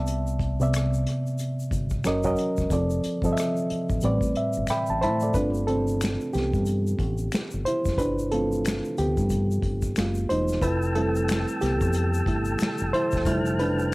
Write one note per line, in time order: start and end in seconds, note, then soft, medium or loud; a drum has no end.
0.00 1.05 C2 medium
0.00 0.44 C3 medium
0.00 0.44 B3 medium
0.00 0.45 D5 medium
0.00 0.45 E5 medium
0.00 2.06 A5 medium
0.07 closed hi-hat medium
0.07 shaker soft
0.27 shaker soft
0.39 kick medium
0.39 closed hi-hat medium
0.60 1.68 C3 medium
0.60 1.69 B3 medium
0.60 1.69 D5 medium
0.60 1.69 E5 medium
0.60 shaker soft
0.73 finger snap medium
0.73 cross-stick loud
0.73 closed hi-hat medium
0.73 shaker medium
0.94 shaker soft
1.07 cross-stick soft
1.07 closed hi-hat medium
1.27 shaker soft
1.38 closed hi-hat medium
1.38 shaker medium
1.59 shaker soft
1.71 2.00 G1 medium
1.71 kick medium
1.71 closed hi-hat medium
1.71 shaker medium
1.90 kick medium
1.90 shaker soft
2.04 2.34 F#1 medium
2.04 2.21 F#3 medium
2.04 2.22 C#4 medium
2.04 2.22 A#4 medium
2.04 2.23 D#5 medium
2.04 finger snap medium
2.04 cross-stick loud
2.04 closed hi-hat medium
2.04 shaker medium
2.23 2.64 F#3 medium
2.23 2.64 C#4 medium
2.23 2.65 A#4 medium
2.23 2.65 D#5 medium
2.23 kick medium
2.23 shaker soft
2.36 closed hi-hat medium
2.36 shaker soft
2.57 2.70 E1 medium
2.57 kick medium
2.57 cross-stick soft
2.57 shaker soft
2.70 2.99 F1 loud
2.70 3.14 F3 medium
2.70 3.14 C4 medium
2.70 3.15 A4 medium
2.70 3.15 D5 medium
2.70 kick medium
2.70 closed hi-hat medium
2.70 shaker medium
2.90 shaker soft
3.04 muted fingered electric bass stroke soft
3.04 closed hi-hat medium
3.04 shaker soft
3.22 3.34 G1 medium
3.22 4.02 F3 medium
3.22 4.02 C4 medium
3.22 4.03 A4 medium
3.22 kick medium
3.22 shaker soft
3.26 3.30 D#5 medium
3.33 4.07 E5 medium
3.37 finger snap medium
3.37 cross-stick medium
3.37 closed hi-hat medium
3.37 shaker medium
3.56 shaker soft
3.70 muted fingered electric bass stroke soft
3.70 closed hi-hat medium
3.89 4.01 A1 medium
3.89 kick medium
3.89 shaker soft
4.01 4.20 A1 loud
4.01 4.72 A2 medium
4.01 4.73 G3 medium
4.01 4.73 C4 medium
4.01 4.69 B4 medium
4.01 closed hi-hat medium
4.01 shaker medium
4.05 4.70 D5 medium
4.21 4.33 A1 medium
4.21 kick medium
4.21 shaker soft
4.35 4.67 E5 medium
4.35 closed hi-hat medium
4.53 shaker soft
4.57 4.68 G1 medium
4.67 5.01 E5 soft
4.67 4.88 G5 medium
4.67 5.00 B5 medium
4.67 finger snap medium
4.67 muted fingered electric bass stroke soft
4.67 cross-stick loud
4.67 closed hi-hat medium
4.67 shaker medium
4.86 5.05 A1 medium
4.86 5.01 A5 medium
4.86 shaker soft
5.01 5.31 A2 medium
5.01 5.33 E4 medium
5.01 5.35 C5 medium
5.01 5.21 E5 medium
5.01 5.21 A5 medium
5.01 5.33 B5 medium
5.01 closed hi-hat medium
5.20 5.54 A4 soft
5.20 5.53 D5 medium
5.20 shaker soft
5.34 6.16 G1 medium
5.34 6.30 A3 medium
5.34 5.68 C4 soft
5.34 5.51 D4 medium
5.34 6.30 F4 medium
5.34 5.49 B4 loud
5.34 kick medium
5.34 closed hi-hat medium
5.34 shaker medium
5.54 shaker soft
5.67 6.30 C4 medium
5.67 6.29 A4 medium
5.67 closed hi-hat medium
5.87 shaker soft
6.01 finger snap medium
6.01 snare medium
6.01 closed hi-hat medium
6.01 shaker medium
6.05 finger snap medium
6.20 shaker soft
6.33 6.51 C2 medium
6.33 7.62 B3 medium
6.33 7.69 G4 medium
6.33 snare soft
6.33 closed hi-hat medium
6.33 shaker soft
6.54 6.93 G2 medium
6.54 kick medium
6.54 shaker soft
6.66 closed hi-hat medium
6.66 shaker medium
6.87 shaker soft
6.99 7.28 A1 medium
6.99 kick medium
6.99 closed hi-hat medium
7.18 shaker soft
7.32 finger snap medium
7.32 snare loud
7.32 closed hi-hat medium
7.32 shaker medium
7.35 finger snap medium
7.51 7.64 G1 medium
7.51 shaker soft
7.65 7.97 E4 medium
7.65 7.96 C5 medium
7.65 closed hi-hat medium
7.85 7.99 F#1 medium
7.85 kick medium
7.85 snare soft
7.85 shaker soft
7.98 8.80 G1 loud
7.98 8.30 D4 medium
7.98 8.32 B4 medium
7.98 kick medium
7.98 closed hi-hat medium
7.98 shaker medium
8.19 shaker soft
8.31 9.27 A3 medium
8.31 8.94 C4 medium
8.31 9.27 F4 medium
8.31 8.99 A4 medium
8.31 closed hi-hat medium
8.52 shaker soft
8.65 finger snap medium
8.65 snare medium
8.65 closed hi-hat medium
8.65 shaker medium
8.68 finger snap medium
8.84 shaker soft
8.98 9.15 D2 medium
8.98 10.26 B3 medium
8.98 10.25 G4 medium
8.98 closed hi-hat medium
8.98 shaker soft
9.17 9.57 G2 medium
9.17 kick medium
9.17 shaker soft
9.30 kick medium
9.30 closed hi-hat medium
9.30 shaker medium
9.51 shaker soft
9.62 9.92 G1 medium
9.62 kick medium
9.62 closed hi-hat medium
9.82 kick medium
9.82 shaker soft
9.96 10.25 F#1 loud
9.96 10.59 G#3 medium
9.96 10.59 A#3 soft
9.96 10.60 F4 medium
9.96 finger snap medium
9.96 snare loud
9.96 closed hi-hat medium
9.96 shaker medium
9.99 finger snap medium
10.15 shaker soft
10.29 10.58 E1 medium
10.29 10.61 D#4 medium
10.29 10.63 C5 medium
10.29 closed hi-hat medium
10.48 snare soft
10.48 shaker soft
10.62 11.44 F1 loud
10.62 10.94 E4 medium
10.62 13.94 A4 medium
10.62 10.96 B4 loud
10.62 13.94 G5 medium
10.62 13.94 A5 medium
10.62 13.23 E6 medium
10.62 kick loud
10.62 closed hi-hat medium
10.62 shaker medium
10.82 shaker soft
10.95 12.26 G3 medium
10.95 12.27 A3 soft
10.95 11.58 C4 medium
10.95 12.27 E4 medium
10.95 11.63 A4 medium
10.95 closed hi-hat medium
11.15 shaker soft
11.28 finger snap medium
11.28 snare loud
11.28 closed hi-hat medium
11.28 shaker medium
11.32 finger snap medium
11.48 shaker soft
11.61 11.82 C2 medium
11.61 12.90 B3 medium
11.61 12.89 G4 medium
11.61 snare soft
11.61 closed hi-hat medium
11.61 shaker soft
11.81 12.21 F2 medium
11.81 kick loud
11.81 shaker soft
11.93 closed hi-hat medium
11.93 shaker medium
12.14 shaker medium
12.26 12.55 G1 medium
12.26 12.57 G3 soft
12.26 12.57 A3 soft
12.26 12.57 E4 medium
12.26 kick medium
12.26 closed hi-hat medium
12.45 shaker soft
12.59 finger snap medium
12.59 muted fingered electric bass stroke soft
12.59 snare loud
12.59 closed hi-hat medium
12.59 shaker medium
12.63 finger snap medium
12.78 12.92 F1 medium
12.78 shaker soft
12.93 13.26 E4 medium
12.93 13.61 C5 loud
12.93 closed hi-hat medium
13.11 13.26 E1 medium
13.11 kick medium
13.11 shaker soft
13.16 snare soft
13.25 13.94 F1 loud
13.25 13.72 G3 medium
13.25 13.73 A3 soft
13.25 13.73 E4 medium
13.25 13.94 F6 medium
13.25 kick medium
13.25 closed hi-hat medium
13.25 shaker medium
13.46 shaker soft
13.59 13.94 D4 medium
13.59 13.94 B4 medium
13.59 closed hi-hat medium
13.79 shaker soft